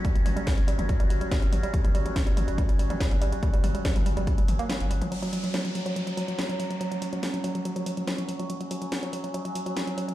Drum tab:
HH |xxoxxxoxxxoxxxox|xxoxxxoxxxoxxxox|xxoxxooxxxoxxxox|xxoxxxoxxxoxxxox|
SD |----o-------o---|----o-------o---|----o-------o---|----o-------o---|
T2 |--o-o--o-o--o-o-|-o-o--o-o--o-o--|o-o--o-o--o-o--o|----------------|
BD |o---o---o---o---|o---o---o---o---|o---o---o-------|----------------|

HH |xxoxxxoxxxoxxxox|xxoxxxoxxxoxxxox|
SD |----o-------o---|----o-------o---|
T2 |----------------|----------------|
BD |----------------|----------------|